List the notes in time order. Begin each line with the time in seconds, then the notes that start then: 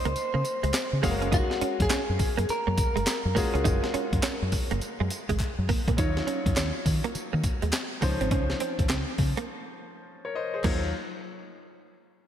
Already playing: G#3 C#4 D#4 F4 C5
0.05 C#2 A#3, closed hi-hat
0.16 closed hi-hat, tambourine
0.34 C#3 A#3
0.44 muted clean electric guitar stroke, closed hi-hat, tambourine
0.63 C#2 G#3, closed hi-hat
0.74 muted clean electric guitar stroke, snare, clap, closed hi-hat, tambourine
0.93 C#3
1.02 F#1 G#3 A#3 C#4 F#4 G#4 F5, kick, open hi-hat, tambourine
1.11 A#4
1.22 C#4, closed hi-hat
1.32 D#4 F#4, kick, closed hi-hat, tambourine
1.50 muted clean electric guitar stroke, snare
1.61 C#4, muted fingered electric bass stroke, closed hi-hat
1.80 F#2 G#4, kick, closed hi-hat
1.90 C#4, muted fingered electric bass stroke, snare, clap, closed hi-hat, tambourine
2.10 F#2
2.19 muted clean electric guitar stroke, kick, open hi-hat, tambourine
2.38 F#2 A#3, closed hi-hat
2.49 A#4, muted fingered electric bass stroke, closed hi-hat, tambourine
2.67 F#2 A#3
2.77 muted clean electric guitar stroke, kick, closed hi-hat, tambourine
2.96 F#1 G#3, closed hi-hat
3.06 muted clean electric guitar stroke, snare, clap, closed hi-hat, tambourine
3.25 F#2
3.35 G#3 A#3 C#4 F4 F#4 G#4, kick, open hi-hat, tambourine
3.54 C#2 C#4, closed hi-hat
3.64 F#1 D#4, kick, closed hi-hat, tambourine
3.83 muted clean electric guitar stroke, snare
3.94 C#4, muted fingered electric bass stroke, closed hi-hat
4.13 F#2, kick, closed hi-hat
4.23 C#4, snare, clap, closed hi-hat, tambourine
4.42 F#2
4.52 muted clean electric guitar stroke, kick, open hi-hat, tambourine
4.71 F#1 A#3, closed hi-hat
4.81 muted fingered electric bass stroke, closed hi-hat, tambourine
5.00 F#2 G#3
5.10 muted clean electric guitar stroke, closed hi-hat, tambourine
5.29 G#1 G#3, kick, closed hi-hat
5.40 muted clean electric guitar stroke, kick, clap, closed hi-hat
5.59 F#2
5.69 A#3, kick, open hi-hat
5.88 A#1 A#3, kick, closed hi-hat
5.97 D#2 F#3 D#4 F4 C#5, kick, closed hi-hat, tambourine
6.17 muted clean electric guitar stroke, snare
6.27 C#4, closed hi-hat
6.46 F#2, kick, closed hi-hat
6.56 D#2 C#4, snare, clap, closed hi-hat, tambourine
6.86 D#3, muted clean electric guitar stroke, kick, open hi-hat, tambourine
7.04 A#3, closed hi-hat
7.15 muted fingered electric bass stroke, closed hi-hat, tambourine
7.33 D#3 A#3
7.44 muted clean electric guitar stroke, kick, closed hi-hat, tambourine
7.62 D#2 G#3, closed hi-hat
7.73 muted clean electric guitar stroke, snare, clap, closed hi-hat, tambourine
8.01 C#2 F3 A#3 C#4 D#4 C5, kick, open hi-hat, tambourine
8.21 G#1 C4, closed hi-hat
8.31 C#2 C#4, kick, closed hi-hat
8.50 muted clean electric guitar stroke, snare
8.60 C4, closed hi-hat
8.79 D#2, kick, closed hi-hat
8.89 C#2 C4, snare, clap, closed hi-hat
9.18 C#3, muted clean electric guitar stroke, kick, open hi-hat
9.37 A#3, closed hi-hat
10.25 A#4 C#5
10.35 C5 D#5
10.54 G#4 C5
10.64 D#2 F#3 A#3 D#4 F4 C#5, kick, clap, crash